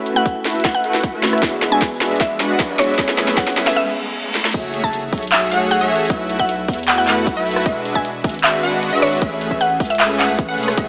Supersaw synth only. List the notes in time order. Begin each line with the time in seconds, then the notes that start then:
Already playing: A3 E4 F#4 B4 E5
0.16 A3 E4 F#4 B4 E5
0.45 A3 E4 F#4 B4 E5
0.84 A3 E4 F#4 B4 F#5
1.13 A3 E4 F#4 B4 E5
1.42 G#3 D4 F#4 B4 E5
1.72 G#3 D4 F#4 B4 E5
2.01 G#3 D4 F#4 B4 E5
2.40 G#3 D4 F#4 B4 F#5
2.69 G#3 D4 F#4 B4 E5
2.98 A3 C#4 G#4 B4 E5
3.28 A3 C#4 G#4 B4 E5
3.57 A3 C#4 G#4 B4 E5
4.54 A3 F#4 G#4 C#5 E5
4.84 A3 F#4 G#4 C#5 E5
5.13 A3 F#4 G#4 C#5 E5
5.52 A3 F#4 G#4 C#5 F#5
5.81 A3 F#4 G#4 C#5 E5
6.10 A3 E4 F#4 B4 E5
6.39 A3 E4 F#4 B4 E5
6.68 A3 E4 F#4 B4 E5
7.07 A3 E4 F#4 B4 F#5
7.37 A3 E4 F#4 B4 E5
7.66 G#3 D4 F#4 B4 E5
7.95 G#3 D4 F#4 B4 E5
8.24 G#3 D4 F#4 B4 E5
8.63 G#3 D4 F#4 B4 F#5
8.93 G#3 D4 F#4 B4 E5
9.22 A3 C#4 G#4 B4 E5
9.51 A3 C#4 G#4 B4 E5
9.80 A3 C#4 G#4 B4 E5
10.19 A3 C#4 G#4 B4 F#5
10.49 A3 C#4 G#4 B4 F#5
10.78 A3 F#4 G#4 C#5 E5